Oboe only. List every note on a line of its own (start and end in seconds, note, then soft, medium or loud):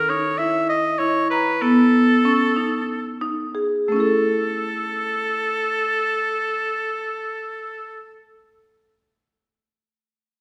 0.00 0.11 A#4 medium
0.09 0.40 C#5 loud
0.38 0.69 E5 loud
0.69 1.00 D#5 loud
0.99 1.30 C#5 loud
1.30 1.64 B4 medium
1.62 3.22 A4 loud
3.88 8.17 A4 medium